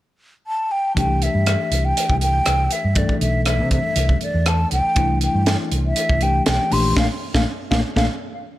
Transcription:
0.47 0.73 A5 medium
0.72 0.96 G5 medium
0.95 1.27 C2 medium
0.95 2.92 E3 soft
0.95 2.92 A3 soft
0.95 2.93 D4 soft
0.95 2.93 G4 soft
0.95 1.25 G5 medium
0.95 kick medium
0.95 closed hi-hat medium
1.22 1.86 E5 medium
1.22 closed hi-hat soft
1.35 1.55 G2 medium
1.46 cross-stick medium
1.46 closed hi-hat medium
1.71 1.91 C2 medium
1.71 closed hi-hat medium
1.85 2.20 G5 medium
1.97 closed hi-hat medium
2.10 2.39 C2 medium
2.10 kick medium
2.21 2.74 G5 medium
2.21 closed hi-hat soft
2.46 2.67 C2 medium
2.46 cross-stick medium
2.46 closed hi-hat medium
2.71 2.98 E5 medium
2.71 closed hi-hat soft
2.84 3.04 G2 medium
2.95 4.92 E3 soft
2.95 4.92 A3 soft
2.95 4.93 D4 soft
2.95 4.93 A4 soft
2.95 3.21 D5 medium
2.95 kick medium
2.95 closed hi-hat medium
3.09 kick medium
3.21 3.60 B1 medium
3.21 3.45 E5 medium
3.21 closed hi-hat medium
3.45 3.70 E5 medium
3.45 cross-stick medium
3.45 closed hi-hat medium
3.59 3.79 C3 medium
3.71 4.18 E5 medium
3.71 kick medium
3.71 closed hi-hat soft
3.96 4.16 C2 medium
3.96 closed hi-hat medium
4.09 kick medium
4.21 4.49 D5 medium
4.21 muted fingered electric bass stroke soft
4.21 closed hi-hat soft
4.34 4.64 E2 medium
4.46 4.72 A5 medium
4.46 cross-stick medium
4.46 closed hi-hat medium
4.71 4.82 C2 medium
4.71 5.19 G5 medium
4.71 closed hi-hat soft
4.85 muted fingered electric bass stroke soft
4.95 5.27 C2 medium
4.95 6.18 E3 soft
4.95 6.19 A3 soft
4.95 6.19 D4 soft
4.95 6.20 E4 medium
4.95 kick medium
4.95 closed hi-hat medium
5.21 5.56 G5 medium
5.21 closed hi-hat soft
5.35 5.55 G2 medium
5.46 snare medium
5.46 closed hi-hat medium
5.72 5.92 C2 medium
5.72 closed hi-hat medium
5.86 6.24 E5 medium
5.96 closed hi-hat medium
6.09 6.39 C2 medium
6.09 kick medium
6.21 6.69 E3 soft
6.21 6.70 A3 soft
6.21 6.71 D4 soft
6.21 6.72 G4 soft
6.21 6.47 G5 medium
6.21 closed hi-hat soft
6.46 6.57 B1 medium
6.46 6.74 G5 medium
6.46 snare medium
6.46 closed hi-hat medium
6.70 6.92 A#1 medium
6.70 6.95 E3 medium
6.70 6.95 A3 soft
6.70 6.95 D4 soft
6.70 6.97 G4 medium
6.70 6.97 C6 medium
6.70 open hi-hat medium
6.96 7.06 A#1 medium
6.96 7.05 A3 medium
6.96 7.05 A#3 medium
6.96 7.05 D4 medium
6.96 7.06 F5 medium
6.96 kick medium
6.96 snare medium
7.34 7.44 A#1 medium
7.34 7.42 A3 medium
7.34 7.42 A#3 medium
7.34 7.42 D4 medium
7.34 7.43 F5 medium
7.34 kick medium
7.34 snare medium
7.71 7.81 A#1 medium
7.71 7.80 A3 medium
7.71 7.80 A#3 medium
7.71 7.80 D4 medium
7.71 7.79 F5 medium
7.71 kick medium
7.71 snare medium
7.96 8.06 A#1 medium
7.96 8.05 A3 medium
7.96 8.05 A#3 medium
7.96 8.05 D4 medium
7.96 8.05 F5 medium
7.96 kick medium
7.96 snare medium

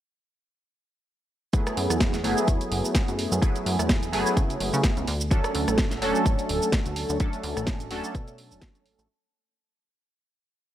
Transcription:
1.53 2.22 F#3 medium
1.53 2.22 A3 medium
1.53 2.22 B3 medium
1.53 2.22 E4 medium
1.53 2.22 G#4 medium
1.53 kick loud
1.53 closed hi-hat medium
1.53 shaker soft
1.67 cross-stick medium
1.67 closed hi-hat medium
1.67 shaker soft
1.77 1.88 F#2 medium
1.77 open hi-hat loud
1.90 2.26 E2 medium
1.90 cross-stick medium
1.90 closed hi-hat soft
1.90 shaker medium
2.00 kick loud
2.00 snare loud
2.00 closed hi-hat medium
2.00 shaker soft
2.13 snare soft
2.13 closed hi-hat medium
2.13 shaker soft
2.24 2.35 F#1 medium
2.24 3.40 F#3 medium
2.24 3.40 A3 medium
2.24 3.40 B3 medium
2.24 3.40 E4 medium
2.24 3.40 G#4 loud
2.24 open hi-hat loud
2.37 shaker medium
2.48 2.59 E2 medium
2.48 kick loud
2.48 closed hi-hat medium
2.48 shaker soft
2.61 closed hi-hat medium
2.61 shaker soft
2.71 2.82 F#1 medium
2.71 open hi-hat loud
2.85 shaker medium
2.95 kick loud
2.95 snare loud
2.95 closed hi-hat medium
2.95 shaker medium
3.08 3.27 F#2 medium
3.08 closed hi-hat medium
3.08 shaker soft
3.19 open hi-hat loud
3.32 3.40 F#2 medium
3.32 shaker medium
3.41 4.10 F#3 medium
3.41 4.10 A3 medium
3.41 4.11 B3 medium
3.41 4.11 E4 medium
3.41 4.11 G#4 medium
3.41 kick loud
3.41 closed hi-hat medium
3.41 shaker soft
3.56 closed hi-hat medium
3.56 shaker soft
3.66 3.77 F#2 loud
3.66 open hi-hat loud
3.79 4.15 E2 medium
3.79 cross-stick medium
3.79 closed hi-hat soft
3.79 shaker medium
3.89 kick loud
3.89 snare loud
3.89 closed hi-hat medium
3.89 shaker soft
4.03 closed hi-hat medium
4.03 shaker soft
4.12 4.24 F#1 medium
4.12 5.06 F#3 loud
4.12 5.06 A3 medium
4.12 5.07 B3 medium
4.12 5.07 E4 medium
4.12 5.07 G#4 loud
4.12 open hi-hat loud
4.26 shaker medium
4.37 4.56 C#3 medium
4.37 kick loud
4.37 closed hi-hat medium
4.37 shaker soft
4.50 closed hi-hat medium
4.50 shaker soft
4.60 4.71 F#1 medium
4.60 open hi-hat loud
4.74 4.82 C#3 loud
4.74 shaker medium
4.83 kick loud
4.83 snare loud
4.83 closed hi-hat medium
4.83 shaker medium
4.97 5.06 C#2 medium
4.97 closed hi-hat medium
4.97 shaker soft
5.07 5.40 D2 loud
5.07 open hi-hat loud
5.21 shaker medium
5.30 5.99 F#3 medium
5.30 6.00 A3 medium
5.30 6.00 C#4 medium
5.30 6.00 D4 medium
5.30 6.00 A4 medium
5.30 kick loud
5.30 closed hi-hat medium
5.30 shaker soft
5.44 cross-stick medium
5.44 closed hi-hat soft
5.44 shaker soft
5.55 5.66 D2 medium
5.55 open hi-hat loud
5.68 6.04 A1 medium
5.68 cross-stick medium
5.68 closed hi-hat soft
5.68 shaker medium
5.78 kick loud
5.78 snare loud
5.78 closed hi-hat medium
5.78 shaker medium
5.91 snare soft
5.91 closed hi-hat medium
5.91 shaker soft
6.02 6.13 D1 medium
6.02 7.18 F#3 medium
6.02 7.18 A3 medium
6.02 7.18 C#4 medium
6.02 7.18 D4 medium
6.02 7.18 A4 loud
6.02 open hi-hat loud
6.15 shaker medium
6.26 6.36 A1 medium
6.26 kick loud
6.26 closed hi-hat medium
6.26 shaker soft
6.39 closed hi-hat medium
6.39 shaker soft
6.49 6.60 D1 loud
6.49 open hi-hat loud
6.62 shaker medium
6.72 kick loud
6.72 snare loud
6.72 closed hi-hat medium
6.72 shaker medium
6.86 7.05 D2 medium
6.86 closed hi-hat soft
6.86 shaker soft
6.96 open hi-hat loud
7.09 7.18 D2 medium
7.09 shaker medium
7.20 7.89 F#3 medium
7.20 7.89 A3 medium
7.20 7.89 C#4 medium
7.20 7.89 D4 medium
7.20 7.89 A4 medium
7.20 kick loud
7.20 closed hi-hat medium
7.20 shaker soft
7.33 closed hi-hat soft
7.33 shaker soft
7.43 7.54 D2 loud
7.43 open hi-hat loud
7.57 7.93 A1 medium
7.57 cross-stick medium
7.57 closed hi-hat soft
7.57 shaker medium
7.67 kick loud
7.67 snare loud
7.67 closed hi-hat medium
7.67 shaker medium
7.80 closed hi-hat medium
7.80 shaker soft
7.91 8.02 D1 medium
7.91 9.07 F#3 medium
7.91 9.07 A3 medium
7.91 9.07 C#4 medium
7.91 9.07 D4 medium
7.91 9.07 A4 loud
7.91 open hi-hat loud
8.04 shaker medium
8.15 8.53 B2 medium
8.15 kick loud
8.15 closed hi-hat medium
8.15 shaker medium
8.28 closed hi-hat soft
8.28 shaker soft
8.38 open hi-hat loud
8.51 8.60 D1 loud
8.51 shaker medium
8.62 kick loud
8.62 snare loud
8.62 closed hi-hat medium
8.62 shaker medium
8.75 closed hi-hat soft
8.75 shaker soft
8.86 8.96 A1 soft
8.86 open hi-hat loud
8.99 9.07 A1 medium
8.99 shaker medium

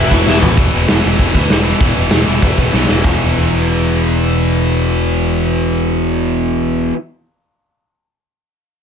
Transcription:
0.00 0.12 E2 loud
0.00 0.25 E2 medium
0.00 0.11 B2 medium
0.00 0.27 B2 medium
0.00 0.11 E3 loud
0.00 0.25 E3 medium
0.00 0.37 E4 medium
0.00 0.37 E5 medium
0.11 0.25 E1 medium
0.11 0.27 E2 medium
0.11 0.28 B2 medium
0.11 0.28 E3 medium
0.11 kick medium
0.11 crash medium
0.26 0.41 E1 medium
0.26 0.56 E2 medium
0.26 0.44 E2 medium
0.26 0.57 B2 medium
0.26 0.43 B2 medium
0.26 0.43 E3 loud
0.26 0.58 E3 loud
0.26 snare medium
0.42 0.56 A1 medium
0.42 0.58 E2 medium
0.42 0.57 B2 medium
0.42 0.57 E3 medium
0.42 floor tom loud
0.57 0.69 E1 medium
0.57 0.74 E2 medium
0.57 0.72 B2 loud
0.57 0.72 E3 loud
0.57 kick loud
0.57 open hi-hat medium
0.73 0.85 E1 medium
0.73 0.88 E2 medium
0.73 0.89 B2 medium
0.73 0.90 E3 medium
0.88 1.00 E1 medium
0.88 1.05 E2 medium
0.88 1.03 B2 medium
0.88 1.04 E3 medium
0.88 snare loud
0.88 open hi-hat medium
1.04 1.16 E1 medium
1.04 1.18 E2 medium
1.04 1.18 B2 medium
1.04 1.19 E3 medium
1.19 1.30 E1 medium
1.19 1.34 E2 medium
1.19 1.33 B2 loud
1.19 1.33 E3 loud
1.19 kick loud
1.19 open hi-hat medium
1.34 1.46 D2 medium
1.34 1.51 E2 medium
1.34 1.50 B2 medium
1.34 1.52 E3 medium
1.34 kick medium
1.50 1.72 E1 medium
1.50 1.67 E2 medium
1.50 1.65 B2 medium
1.50 1.65 E3 medium
1.50 snare loud
1.50 open hi-hat medium
1.66 1.80 E2 medium
1.66 1.81 B2 medium
1.66 1.81 E3 medium
1.80 1.92 E1 medium
1.80 1.96 E2 medium
1.80 1.95 B2 medium
1.80 1.95 E3 loud
1.80 kick loud
1.80 open hi-hat medium
1.96 2.08 E1 medium
1.96 2.10 E2 medium
1.96 2.11 B2 medium
1.96 2.12 E3 medium
2.11 2.23 E1 medium
2.11 2.27 E2 medium
2.11 2.26 B2 medium
2.11 2.25 E3 medium
2.11 snare loud
2.11 open hi-hat medium
2.27 2.38 E1 medium
2.27 2.42 E2 medium
2.27 2.43 B2 medium
2.27 2.43 E3 medium
2.42 2.54 E1 medium
2.42 2.58 E2 medium
2.42 2.58 B2 loud
2.42 2.57 E3 medium
2.42 kick loud
2.42 open hi-hat medium
2.58 2.69 E1 medium
2.58 2.72 E2 medium
2.58 2.73 B2 medium
2.58 2.74 E3 medium
2.58 kick medium
2.73 2.85 B1 medium
2.73 2.88 E2 medium
2.73 2.87 B2 medium
2.73 2.87 E3 medium
2.73 snare medium
2.88 3.01 E1 medium
2.88 3.02 E2 medium
2.88 3.04 B2 medium
2.88 3.03 E3 medium
2.88 snare medium
3.03 6.91 E1 medium
3.03 6.93 E2 medium
3.03 6.95 B2 medium
3.03 kick medium
3.03 floor tom medium
3.03 crash medium
3.08 6.98 E3 medium

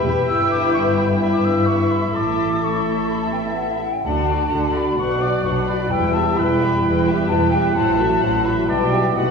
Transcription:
0.00 0.27 B3 medium
0.00 0.26 G4 medium
0.00 1.18 G5 medium
0.04 0.13 E1 medium
0.04 0.12 E2 medium
0.04 0.28 G4 soft
0.04 0.27 B4 soft
0.04 0.27 E5 soft
0.27 2.10 G1 medium
0.27 2.10 G2 medium
0.27 2.10 B3 medium
0.27 2.57 E4 medium
0.27 1.16 E4 medium
0.27 1.17 B4 medium
0.27 1.16 E5 medium
0.27 0.51 E6 medium
0.52 0.73 D6 medium
0.74 0.80 C#6 medium
0.98 1.04 B5 medium
1.19 2.13 E4 soft
1.19 2.13 B4 medium
1.19 2.12 E5 soft
1.19 1.66 G5 medium
1.19 1.32 B5 medium
1.33 1.46 D6 medium
1.45 1.67 E6 medium
1.66 2.16 E5 soft
1.66 1.93 C#6 medium
1.91 2.18 B5 medium
2.13 3.80 A1 soft
2.13 3.80 A2 soft
2.13 2.56 A3 soft
2.13 2.61 E4 soft
2.13 2.61 A4 soft
2.13 3.80 A4 soft
2.13 2.60 E5 soft
2.13 2.66 D6 medium
2.61 3.28 A3 medium
2.61 3.82 E4 soft
2.61 3.81 A4 soft
2.61 3.81 E5 soft
2.61 3.09 C#6 medium
3.10 3.21 B5 medium
3.22 3.27 A5 soft
3.32 3.67 B3 soft
3.32 3.38 G5 medium
3.46 3.51 E5 soft
3.56 3.68 F#5 soft
3.70 3.75 E5 soft
3.80 4.04 C#4 soft
3.80 3.94 F#5 medium
3.93 4.04 G5 soft
4.04 4.45 D2 medium
4.04 4.46 D3 medium
4.04 4.27 D4 soft
4.04 5.87 F#4 soft
4.04 4.27 A4 soft
4.04 4.27 F#5 soft
4.04 4.74 A5 medium
4.28 4.51 F#4 soft
4.28 4.52 F#4 soft
4.28 4.51 D5 soft
4.51 4.92 D2 soft
4.51 4.92 D3 medium
4.51 4.76 D4 soft
4.51 4.75 A4 soft
4.51 4.74 F#5 soft
4.74 4.99 F#4 soft
4.74 4.98 D5 soft
4.74 4.98 B5 medium
4.97 5.39 B1 medium
4.97 5.39 B2 medium
4.97 5.90 F#3 soft
4.97 5.20 D4 soft
4.97 5.20 B4 soft
4.97 5.87 F#5 medium
4.97 5.20 F#5 soft
4.97 5.23 C#6 medium
5.22 5.45 F#4 soft
5.22 5.45 D5 soft
5.22 5.44 D6 medium
5.43 5.86 B1 medium
5.43 5.87 B2 medium
5.43 5.68 D4 soft
5.43 5.67 B4 soft
5.43 5.69 F#5 soft
5.43 5.50 C#6 medium
5.68 5.92 F#4 soft
5.68 5.91 D5 soft
5.68 5.92 B5 medium
5.90 6.32 E1 medium
5.90 6.32 E2 medium
5.90 7.76 G3 medium
5.90 6.13 E4 soft
5.90 9.12 E4 medium
5.90 6.13 B4 soft
5.90 6.40 E5 medium
5.90 6.12 G5 soft
5.90 6.15 G5 medium
6.14 6.38 G4 soft
6.14 6.37 E5 soft
6.14 6.38 A5 medium
6.37 6.78 E1 medium
6.37 6.78 E2 medium
6.37 6.61 E4 soft
6.37 6.61 B4 soft
6.37 8.68 B4 medium
6.37 6.61 G5 soft
6.37 7.02 B5 medium
6.60 6.84 G4 soft
6.60 6.84 E5 soft
6.83 7.24 E1 medium
6.83 7.25 E2 medium
6.83 7.05 E4 medium
6.83 7.05 B4 medium
6.83 7.05 G5 soft
7.06 7.29 G4 soft
7.06 7.30 G4 soft
7.06 7.29 E5 soft
7.28 7.70 E1 medium
7.28 7.70 E2 medium
7.28 7.53 E4 soft
7.28 7.53 B4 medium
7.28 7.52 G5 soft
7.28 7.50 A5 medium
7.51 7.76 G4 soft
7.51 7.76 E5 soft
7.51 7.75 G5 medium
7.75 8.16 A1 medium
7.75 8.17 A2 medium
7.75 8.66 F#3 medium
7.75 7.97 E4 soft
7.75 7.98 C5 soft
7.75 7.97 F#5 soft
7.75 8.47 A5 medium
7.99 8.22 F#4 soft
7.99 8.22 A4 soft
7.99 8.22 E5 soft
8.21 8.63 A1 medium
8.21 8.63 A2 medium
8.21 8.45 E4 soft
8.21 8.46 C5 soft
8.21 8.45 F#5 soft
8.45 8.68 F#4 soft
8.45 8.69 A4 soft
8.45 8.68 E5 soft
8.45 8.70 B5 medium
8.68 9.10 B1 medium
8.68 9.11 B2 medium
8.68 9.16 G3 soft
8.68 8.90 E4 soft
8.68 8.91 B4 soft
8.68 9.17 D5 medium
8.68 8.90 G5 soft
8.68 8.91 A5 medium
8.91 9.15 G4 soft
8.91 9.17 G4 soft
8.91 9.16 E5 soft
8.91 9.17 G5 medium
9.15 9.31 B1 soft
9.15 9.31 B2 soft
9.15 9.31 A3 soft
9.15 9.31 D#4 soft
9.15 9.31 F#4 soft
9.15 9.31 B4 soft
9.15 9.31 D#5 soft
9.15 9.31 F#5 medium
9.15 9.31 F#5 soft

